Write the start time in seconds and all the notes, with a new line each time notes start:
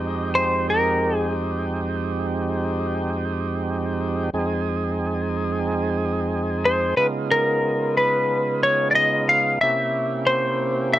Already playing: F2 G#3 C4 D#4 G4 D#5
0.35 C5
0.70 A#4
1.17 G#4
4.33 F2 G#3 C4 D#4 G#4
6.65 C5
6.97 C#3 G#3 B3 D#4 F4 B4
7.31 A#4
7.97 B4
8.63 C#5
8.91 D5
8.95 D#5
9.29 F5
9.61 C3 A#3 C#4 E4 G4 E5
10.27 C5
10.93 E5